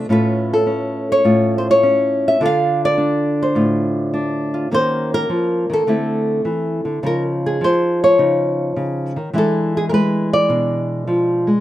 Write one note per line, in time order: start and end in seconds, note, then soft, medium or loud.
0.00 0.15 F3 medium
0.00 0.12 G4 soft
0.09 1.23 A2 medium
0.09 0.65 C#4 soft
0.09 1.25 F4 soft
0.09 0.53 A4 soft
0.09 1.08 B4 medium
0.54 1.09 A4 medium
0.66 1.82 C#4 medium
1.12 1.57 C#5 medium
1.25 2.40 A2 medium
1.25 2.38 F4 soft
1.58 1.66 C5 medium
1.71 2.26 C#5 medium
1.83 2.39 C#4 medium
2.28 2.43 E5 medium
2.40 4.71 D3 medium
2.40 2.96 D4 soft
2.40 3.55 F4 soft
2.40 3.39 A4 soft
2.46 2.83 F5 loud
2.85 3.98 D5 loud
2.98 4.12 D4 medium
3.43 4.73 C5 medium
3.55 4.71 A2 medium
3.55 4.53 F4 soft
4.14 4.69 D4 medium
4.54 4.70 F4 soft
4.71 5.29 D#3 medium
4.71 5.85 A#3 soft
4.71 5.86 C#4 soft
4.71 5.86 F#4 soft
4.71 5.13 C5 loud
5.14 5.71 A#4 medium
5.29 5.69 F3 medium
5.70 5.87 D#3 medium
5.70 7.05 A4 medium
5.87 6.44 D3 medium
5.87 7.01 A3 soft
5.87 7.04 C4 soft
5.87 7.04 E4 soft
6.45 6.85 E3 medium
6.85 7.03 D3 medium
7.03 7.61 C#3 medium
7.03 7.60 F3 soft
7.03 8.18 D#4 soft
7.03 7.22 A#4 medium
7.46 8.20 G#4 medium
7.61 9.16 F3 medium
7.61 8.03 C5 medium
8.04 9.36 C#5 medium
8.18 8.75 C#3 medium
8.18 9.32 D#4 soft
8.76 9.16 C#3 medium
9.16 9.33 D#3 medium
9.33 11.07 E3 medium
9.33 9.91 G#3 soft
9.33 10.49 D4 soft
9.33 9.77 E4 soft
9.38 9.76 A4 medium
9.77 9.84 G#4 medium
9.89 11.46 G#3 medium
9.89 9.93 A#4 medium
9.94 10.33 B4 medium
10.33 11.60 D5 medium
10.49 11.60 B2 medium
10.49 11.60 D4 soft
11.07 11.47 F3 medium
11.47 11.60 G#3 medium